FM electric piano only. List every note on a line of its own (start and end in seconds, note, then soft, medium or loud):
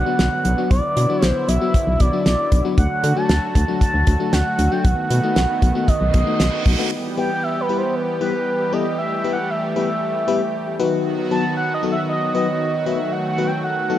0.06 0.19 F#3 medium
0.06 0.19 B3 medium
0.06 0.19 D4 medium
0.06 0.19 F#4 medium
0.45 0.52 D4 medium
0.45 0.51 F#4 medium
0.58 0.71 F#3 medium
0.58 0.71 B3 medium
0.58 0.71 D4 medium
0.58 0.71 F#4 medium
0.97 1.03 D4 medium
0.97 1.03 F#4 medium
1.10 1.23 F#3 medium
1.10 1.23 B3 medium
1.10 1.23 D4 medium
1.10 1.23 F#4 medium
1.48 1.55 D4 medium
1.48 1.55 F#4 medium
1.61 1.74 F#3 medium
1.61 1.74 B3 medium
1.61 1.74 D4 medium
1.61 1.74 F#4 medium
2.00 2.07 D4 medium
2.00 2.07 F#4 medium
2.13 2.26 F#3 medium
2.13 2.26 B3 medium
2.13 2.26 D4 medium
2.13 2.26 F#4 medium
2.52 2.58 D4 medium
2.52 2.58 F#4 medium
2.65 2.78 F#3 medium
2.65 2.78 B3 medium
2.65 2.78 D4 medium
2.65 2.78 F#4 medium
3.04 3.10 D4 medium
3.04 3.10 F#4 medium
3.17 3.30 F#3 medium
3.17 3.30 A3 medium
3.17 3.30 D4 medium
3.17 3.30 F#4 medium
3.55 3.62 D4 medium
3.55 3.62 F#4 medium
3.68 3.81 F#3 medium
3.68 3.81 A3 medium
3.68 3.81 D4 medium
3.68 3.81 F#4 medium
4.07 4.14 D4 medium
4.07 4.14 F#4 medium
4.20 4.33 F#3 medium
4.20 4.33 A3 medium
4.20 4.33 D4 medium
4.20 4.33 F#4 medium
4.59 4.65 D4 medium
4.59 4.65 E4 medium
4.72 4.85 F#3 medium
4.72 4.85 A3 medium
4.72 4.85 D4 medium
4.72 4.85 F#4 medium
5.11 5.17 D#4 medium
5.11 5.17 F#4 medium
5.23 5.36 A3 medium
5.23 5.36 B3 medium
5.23 5.36 D#4 medium
5.23 5.36 F#4 medium
5.62 5.69 D#4 medium
5.62 5.69 F#4 loud
5.75 5.88 A3 medium
5.75 5.88 B3 medium
5.75 5.88 D#4 medium
5.75 5.88 F#4 medium
6.14 6.20 D#4 medium
6.14 6.20 F#4 medium
6.27 6.40 A3 medium
6.27 6.40 B3 medium
6.27 6.40 D#4 medium
6.27 6.40 F#4 medium
6.66 6.72 D#4 medium
6.66 6.72 F#4 medium
6.79 6.92 A3 medium
6.79 6.92 B3 medium
6.79 6.92 D#4 medium
6.79 6.92 F#4 medium
7.17 7.30 G3 medium
7.17 7.30 B3 medium
7.17 7.30 E4 medium
7.17 7.30 G4 medium
7.17 7.30 B4 medium
7.69 7.82 G3 medium
7.69 7.82 B3 medium
7.69 7.82 E4 medium
7.69 7.82 G4 medium
7.69 7.82 B4 medium
8.21 8.34 G3 medium
8.21 8.34 B3 medium
8.21 8.34 E4 medium
8.21 8.34 G4 medium
8.21 8.34 B4 medium
8.73 8.86 G3 medium
8.73 8.86 B3 medium
8.73 8.86 E4 medium
8.73 8.86 G4 medium
8.73 8.86 A4 medium
9.24 9.37 G3 medium
9.24 9.37 B3 medium
9.24 9.37 E4 medium
9.24 9.37 G4 medium
9.24 9.37 B4 medium
9.76 9.89 G3 medium
9.76 9.89 B3 medium
9.76 9.89 E4 medium
9.76 9.89 G4 medium
9.76 9.89 B4 medium
10.28 10.41 G3 medium
10.28 10.41 B3 medium
10.28 10.41 E4 medium
10.28 10.41 G4 medium
10.28 10.41 B4 loud
10.79 11.21 F#3 loud
10.79 11.21 B3 medium
10.79 11.21 D#4 medium
10.79 11.21 F#4 medium
10.79 11.21 B4 loud
11.31 11.44 F#3 medium
11.31 11.44 B3 medium
11.31 11.44 D#4 medium
11.31 11.44 F#4 medium
11.31 11.44 B4 medium
11.83 11.96 F#3 medium
11.83 11.96 B3 medium
11.83 11.96 D#4 medium
11.83 11.96 F#4 medium
11.83 11.96 A4 medium
12.35 12.48 F#3 medium
12.35 12.48 B3 medium
12.35 12.48 D#4 medium
12.35 12.48 F#4 medium
12.35 12.48 B4 medium
12.86 12.99 F#3 medium
12.86 12.99 B3 medium
12.86 12.99 D#4 medium
12.86 12.99 F#4 medium
12.86 12.99 B4 medium
13.38 13.51 F#3 medium
13.38 13.51 B3 medium
13.38 13.51 D#4 medium
13.38 13.51 F#4 medium
13.38 13.51 B4 medium
13.90 13.98 F#3 medium
13.90 13.98 B3 medium
13.90 13.98 D#4 medium
13.90 13.98 F#4 medium
13.90 13.98 A4 medium